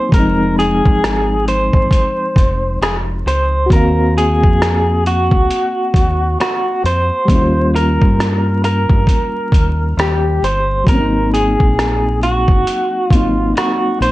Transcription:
Already playing: reed electric piano F#3 A#3 C4 D#4, clean electric guitar C5
0.09 fingered electric bass F1, reed electric piano F3 G#3, kick
0.14 reed electric piano C4, clean electric guitar A#4, closed hi-hat
0.19 reed electric piano D#4
0.59 clean electric guitar G#4, closed hi-hat
0.86 fingered electric bass G#1, kick
1.04 cross-stick, closed hi-hat
1.48 clean electric guitar C5, closed hi-hat
1.73 fingered electric bass G#1, kick
1.91 kick, closed hi-hat
2.36 fingered electric bass F1, kick, closed hi-hat
2.81 fingered electric bass F1, clean electric guitar G#4, cross-stick, closed hi-hat
3.26 fingered electric bass C#2, clean electric guitar C5, closed hi-hat
3.66 reed electric piano A#3 F#4
3.70 fingered electric bass D#2, reed electric piano C4, clean electric guitar A#4, kick, closed hi-hat
3.76 reed electric piano F5
4.18 clean electric guitar G#4, closed hi-hat
4.44 fingered electric bass F2, kick
4.62 cross-stick, closed hi-hat
5.06 clean electric guitar F#4, closed hi-hat
5.31 fingered electric bass C#2, kick
5.50 closed hi-hat
5.94 fingered electric bass D#2, kick, closed hi-hat
6.41 clean electric guitar F#4, cross-stick, closed hi-hat
6.84 fingered electric bass F2, clean electric guitar C5, closed hi-hat
7.25 fingered electric bass D#2, reed electric piano G3 A#3, kick
7.30 reed electric piano C#4, closed hi-hat
7.35 reed electric piano E4
7.42 reed electric piano F4
7.76 clean electric guitar A#4, closed hi-hat
8.02 fingered electric bass G2, kick
8.20 cross-stick, closed hi-hat
8.64 clean electric guitar A#4, closed hi-hat
8.89 fingered electric bass G2, kick
9.07 kick, closed hi-hat
9.52 fingered electric bass D#2, kick, closed hi-hat
9.97 fingered electric bass D#2, clean electric guitar G4, cross-stick, closed hi-hat
10.42 fingered electric bass G1, clean electric guitar C5, closed hi-hat
10.84 fingered electric bass G#1, reed electric piano F#3 A#3, kick
10.88 reed electric piano C4, clean electric guitar A#4, closed hi-hat
10.94 reed electric piano C#4
11.00 reed electric piano D#4
11.34 clean electric guitar G#4, closed hi-hat
11.60 fingered electric bass A#1, kick
11.79 cross-stick, closed hi-hat
12.23 clean electric guitar F#4, closed hi-hat
12.48 fingered electric bass F#1, kick
12.67 closed hi-hat
13.07 fingered electric bass G#1, reed electric piano F#3, clean electric guitar F4, kick
13.12 reed electric piano A#3 C4 D#4, closed hi-hat
13.57 clean electric guitar F#4, cross-stick, closed hi-hat
14.00 fingered electric bass A#1, clean electric guitar C5, closed hi-hat

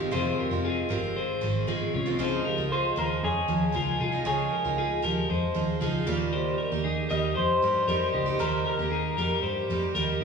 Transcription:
Already playing: clean electric guitar D#4 F4 G4
0.00 steel-string acoustic guitar D#3 G#3 C4 F4
0.11 picked electric bass F1, steel-string acoustic guitar F2 C3 D#3 G#3 C4 F4, clean electric guitar F4 G#4 C5
0.39 clean electric guitar G4 A#4
0.51 picked electric bass F1, steel-string acoustic guitar D#3 G#3 C4 F4
0.65 clean electric guitar F4 G#4
0.89 picked electric bass G1, steel-string acoustic guitar D#3 G#3 C4 F4, clean electric guitar G4 A#4
1.17 clean electric guitar G#4 C5
1.41 picked electric bass G#1, steel-string acoustic guitar D#3 G#3 C4 F4
1.67 picked electric bass G1, steel-string acoustic guitar D#3 G#3 C4 F4, clean electric guitar F4 G#4
1.94 picked electric bass C2, clean electric guitar C#4 F4
2.06 steel-string acoustic guitar D#3 G#3 C4 F4
2.19 picked electric bass C#2, steel-string acoustic guitar C#3 F3 G#3 D#4 F4, clean electric guitar G#4 C5
2.45 clean electric guitar G4 A#4
2.58 picked electric bass C#2, steel-string acoustic guitar G#3 D#4 F4
2.72 clean electric guitar F4 G#4 C5
2.96 picked electric bass D#2, steel-string acoustic guitar F3 G#3 D#4 F4, clean electric guitar G#4 A#4 C5
3.23 picked electric bass F2, clean electric guitar G#4 C#5
3.48 picked electric bass D#2, steel-string acoustic guitar F3 G#3 D#4 F4
3.72 picked electric bass C#2, steel-string acoustic guitar F3 G#3 D#4 F4, clean electric guitar F4 A#4
4.00 picked electric bass C2, clean electric guitar F4 G#4
4.12 steel-string acoustic guitar G#3 D#4 F4
4.25 picked electric bass C#2, steel-string acoustic guitar C#3 F3 G#3 D#4 F4, clean electric guitar G#4 C#5
4.52 clean electric guitar G4 A#4
4.65 picked electric bass C#2, steel-string acoustic guitar G#3 D#4 F4
4.78 clean electric guitar F4 G#4
5.02 picked electric bass D#2, steel-string acoustic guitar F3 G#3 D#4 F4, clean electric guitar G4 A#4
5.30 picked electric bass F2, clean electric guitar G#4 C5
5.54 picked electric bass D#2, steel-string acoustic guitar F3 G#3 D#4 F4
5.80 picked electric bass C#2, steel-string acoustic guitar F3 G#3 D#4 F4, clean electric guitar F4 G#4
6.06 picked electric bass D#2, steel-string acoustic guitar D#3 G3 A#3 D#4 G4, clean electric guitar A#3 F4
6.33 clean electric guitar G4 C5
6.58 clean electric guitar G4 A#4
6.72 picked electric bass D#2, steel-string acoustic guitar A#3 D#4 G4
6.84 clean electric guitar D#4 G#4
7.09 picked electric bass D#2, steel-string acoustic guitar G3 A#3 D#4 G4, clean electric guitar G4 A#4 D#5
7.35 picked electric bass F2, clean electric guitar G4 C5
7.62 picked electric bass G2, steel-string acoustic guitar G3 A#3 D#4 G4
7.88 picked electric bass F2, steel-string acoustic guitar G3 A#3 D#4 G4, clean electric guitar G4 A#4
8.13 picked electric bass C#2, clean electric guitar D#4 G4
8.26 steel-string acoustic guitar A#3 D#4 G4
8.39 picked electric bass D#2, steel-string acoustic guitar D#3 G3 A#3 D#4 G4, clean electric guitar G4 A#4 C5
8.65 clean electric guitar G4 A#4
8.79 picked electric bass D#2, steel-string acoustic guitar A#3 D#4 G4
8.91 clean electric guitar D#4 G#4
9.17 picked electric bass F2, steel-string acoustic guitar G3 A#3 D#4 G4, clean electric guitar G4 A#4
9.43 picked electric bass G2, clean electric guitar G4 C5
9.70 picked electric bass F2, steel-string acoustic guitar G3 A#3 D#4 G4
9.95 picked electric bass D#2, steel-string acoustic guitar G3 A#3 D#4 G4, clean electric guitar G4 A#4
10.21 clean electric guitar G4

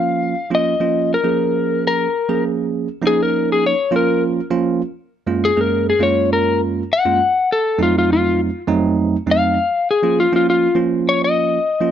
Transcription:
Already playing: tine electric piano F3 A#3 C#4 F4, electric slide guitar F5
0.50 tine electric piano F3 A#3 C#4 F4
0.55 electric slide guitar D#5
0.80 tine electric piano F3 A#3 C#4 F4
1.14 electric slide guitar A#4
1.24 tine electric piano F3 A#3 C#4 G#4
1.87 electric slide guitar A#4
2.29 tine electric piano F3 A#3 C#4 G#4
3.02 tine electric piano F3 A#3 C#4 D#4
3.07 electric slide guitar G#4
3.23 electric slide guitar A#4
3.52 electric slide guitar G#4
3.66 electric slide guitar C#5
3.91 tine electric piano F3 A#3 C#4 F4
3.96 electric slide guitar A#4
4.50 tine electric piano F3 A#3 C#4 F4
5.27 tine electric piano F#2 G#3 A#3 C#4 F4
5.45 electric slide guitar G#4
5.56 tine electric piano F#2 G#3 A#3 C#4 G#4
5.61 electric slide guitar A#4
5.90 electric slide guitar G#4
5.99 tine electric piano F#2 G#3 A#3 C#4 F4, electric slide guitar C#5
6.33 electric slide guitar A#4
6.93 electric slide guitar F#5
7.05 tine electric piano F#2 G#3 A#3 C#4 F4
7.52 electric slide guitar A4
7.78 tine electric piano F2 F#3 A3 C4 D#4
7.83 electric slide guitar F4
7.98 electric slide guitar F4
8.13 electric slide guitar F4
8.67 tine electric piano F2 F#3 A3 C4 D#4
9.26 tine electric piano F2 F#3 A3 C4 D#4
9.31 electric slide guitar F5
9.91 electric slide guitar G#4
10.03 tine electric piano F3 A#3 C#4 F4
10.20 electric slide guitar F4
10.32 tine electric piano F3 A#3 C#4 F4, electric slide guitar F4
10.50 electric slide guitar F4
10.75 tine electric piano F3 A#3 C#4 F4
11.09 electric slide guitar C#5
11.24 electric slide guitar D#5
11.80 tine electric piano F3 A#3 C#4 F4

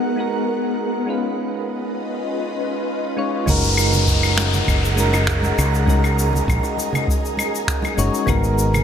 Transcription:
Already playing: synth keys G#3 B3 D#4 F#4 A#4, ambient pad B3 G#4 A#4 F#5
0.16 synth keys G#3 B3 D#4 F#4
0.20 synth keys A#4
1.06 synth keys G#3 C#4 D#4 F4, ambient pad C#4 F4 B4 D#5
1.10 synth keys B4
3.17 synth keys G#3 C#4 D#4 F4 C#5
3.46 fretless electric bass F#1, synth keys G#3 C#4 D#4 F#4 A#4, ambient pad G#4 D#5 F#5 A#5, kick, downlifter, high conga, low conga, shaker
3.64 shaker
3.77 claves, shaker
3.93 high conga, low conga, shaker
4.07 kick, shaker
4.23 claves, shaker
4.38 finger snap, high conga, shaker
4.53 low conga, shaker
4.68 fretless electric bass F#1, kick, claves, shaker
4.85 shaker
4.96 synth keys G#3 C#4 D#4 F#4 A#4, high bongo, high conga, shaker
5.13 high bongo, claves, shaker
5.27 finger snap, kick, shaker
5.42 high conga, shaker
5.58 fretless electric bass C#2, high bongo, claves, shaker
5.74 shaker
5.86 synth keys G#3 C#4 D#4 F#4 A#4, ambient pad G#5, kick, high conga, low conga, shaker
6.04 claves, shaker
6.19 shaker
6.33 high conga, low conga, shaker
6.48 fretless electric bass A#1, kick, claves, shaker
6.63 high bongo, shaker
6.77 high conga, shaker
6.93 low conga, claves, shaker
7.08 kick, shaker
7.25 shaker
7.37 high conga, claves, shaker
7.55 shaker
7.68 finger snap, kick, shaker
7.82 high bongo, high conga, claves, shaker
7.97 fretless electric bass F#1, synth keys G#3 C#4 D#4 F#4 C#5, shaker
8.14 shaker
8.26 fretless electric bass G#1, synth keys G#3 B3 D#4 F#4 A#4, ambient pad B3 F#5 A#5, kick, high conga, low conga, claves, shaker
8.44 shaker
8.58 shaker
8.73 high conga, low conga, claves, shaker

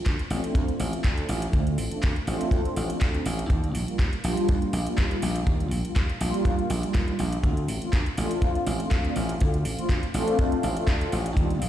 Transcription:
0.06 slap bass D2, kick, clap, closed hi-hat
0.19 closed hi-hat
0.30 slap bass A1, analog synth pad A3 C4 D4 F4, open hi-hat
0.44 closed hi-hat
0.55 slap bass D2, analog synth pad A3 C4 D4 F4, kick, closed hi-hat
0.68 closed hi-hat
0.80 slap bass A1, open hi-hat
0.92 analog synth pad A3 C4 D4 F4, muted slap bass stroke, closed hi-hat
1.04 slap bass D2, kick, clap, closed hi-hat
1.17 analog synth pad A3 C4 D4 F4, closed hi-hat
1.29 slap bass A1, open hi-hat
1.42 closed hi-hat
1.53 slap bass D2, analog synth pad A3 C4 D4 F4, kick, closed hi-hat
1.67 closed hi-hat
1.78 slap bass A1, open hi-hat
1.91 analog synth pad A3 C4 D4 F4, muted slap bass stroke, closed hi-hat
2.03 slap bass D2, kick, clap, closed hi-hat
2.16 closed hi-hat
2.26 slap bass A1, analog synth pad A3 C4 D4 F4, open hi-hat
2.41 closed hi-hat
2.51 slap bass D2, analog synth pad A3 C4 D4 F4, kick, closed hi-hat
2.65 closed hi-hat
2.76 slap bass A1, open hi-hat
2.89 analog synth pad A3 C4 D4 F4, muted slap bass stroke, closed hi-hat
3.01 slap bass D2, kick, clap, closed hi-hat
3.13 analog synth pad A3 C4 D4 F4, closed hi-hat
3.26 slap bass A1, open hi-hat
3.39 closed hi-hat
3.49 slap bass D#2, analog synth pad G3 A#3 D4 F4, kick, closed hi-hat
3.64 closed hi-hat
3.75 slap bass A#1, open hi-hat
3.87 analog synth pad G3 A#3 D4 F4, muted slap bass stroke, closed hi-hat
3.99 slap bass D#2, kick, clap, closed hi-hat
4.13 closed hi-hat
4.23 slap bass A#1, analog synth pad G3 A#3 D4 F4, open hi-hat
4.37 closed hi-hat
4.48 slap bass D#2, analog synth pad G3 A#3 D4 F4, kick, closed hi-hat
4.62 closed hi-hat
4.73 slap bass A#1, open hi-hat
4.86 analog synth pad G3 A#3 D4 F4, muted slap bass stroke, closed hi-hat
4.98 slap bass D#2, kick, clap, closed hi-hat
5.10 analog synth pad G3 A#3 D4 F4, closed hi-hat
5.22 slap bass A#1, open hi-hat
5.36 closed hi-hat
5.46 slap bass D#2, analog synth pad G3 A#3 D4 F4, kick, closed hi-hat
5.60 closed hi-hat
5.71 slap bass A#1, open hi-hat
5.84 analog synth pad G3 A#3 D4 F4, closed hi-hat
5.96 slap bass D#2, kick, clap, closed hi-hat
6.10 closed hi-hat
6.20 slap bass A#1, analog synth pad G3 A#3 D4 F4, open hi-hat
6.34 closed hi-hat
6.45 slap bass D#2, analog synth pad G3 A#3 D4 F4, kick, closed hi-hat
6.59 closed hi-hat
6.70 slap bass A#1, open hi-hat
6.83 analog synth pad G3 A#3 D4 F4, muted slap bass stroke, closed hi-hat
6.94 slap bass D#2, kick, clap, closed hi-hat
7.07 analog synth pad G3 A#3 D4 F4, closed hi-hat
7.19 slap bass A#1, open hi-hat
7.32 closed hi-hat
7.43 slap bass D2, analog synth pad A3 C4 D4 F4, kick, closed hi-hat
7.57 closed hi-hat
7.68 slap bass A1, open hi-hat
7.81 analog synth pad A3 C4 D4 F4, closed hi-hat
7.93 slap bass D2, kick, clap, closed hi-hat
8.06 closed hi-hat
8.17 slap bass A1, analog synth pad A3 C4 D4 F4, open hi-hat
8.31 closed hi-hat
8.42 slap bass D2, analog synth pad A3 C4 D4 F4, kick, closed hi-hat
8.55 closed hi-hat
8.67 slap bass A1, open hi-hat
8.80 analog synth pad A3 C4 D4 F4, muted slap bass stroke, closed hi-hat
8.91 slap bass D2, kick, clap, closed hi-hat
9.04 analog synth pad A3 C4 D4 F4, closed hi-hat
9.16 slap bass A1, open hi-hat
9.29 closed hi-hat
9.40 slap bass D2, analog synth pad A3 C4 D4 F4, kick, closed hi-hat
9.54 closed hi-hat
9.65 slap bass A1, open hi-hat
9.78 analog synth pad A3 C4 D4 F4, muted slap bass stroke, closed hi-hat
9.89 slap bass D2, kick, clap, closed hi-hat
10.03 closed hi-hat
10.14 slap bass A1, analog synth pad A3 C4 D4 F4, open hi-hat
10.28 closed hi-hat
10.38 slap bass D2, analog synth pad A3 C4 D4 F4, kick, closed hi-hat
10.52 closed hi-hat
10.63 slap bass A1, open hi-hat
10.76 analog synth pad A3 C4 D4 F4, muted slap bass stroke, closed hi-hat
10.88 slap bass D2, kick, clap, closed hi-hat
11.00 analog synth pad A3 C4 D4 F4, closed hi-hat
11.12 slap bass A1, open hi-hat
11.26 closed hi-hat
11.36 slap bass D#2, analog synth pad G3 A#3 D4 F4, kick, closed hi-hat
11.50 closed hi-hat
11.62 slap bass A#1, open hi-hat

